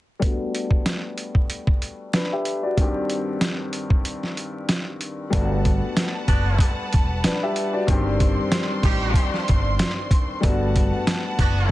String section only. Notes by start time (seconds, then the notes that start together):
5.34 G3 B4 F#5 A5
7.86 C5 D5 C6
10.43 G3 B4 F#5 A5